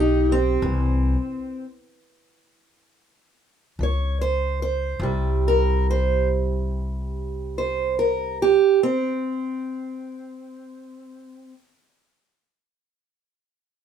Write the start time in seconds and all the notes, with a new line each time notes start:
Already playing: B1 E3 G4
0.00 D#4
0.32 C4
0.62 C2 C3 E3
3.79 C#2 C#3
3.83 C#5
4.21 C5
4.62 C5
5.00 C2 C3 G3
5.48 A#4
5.91 C5
7.58 C5
7.99 A#4
8.42 G4
8.83 C4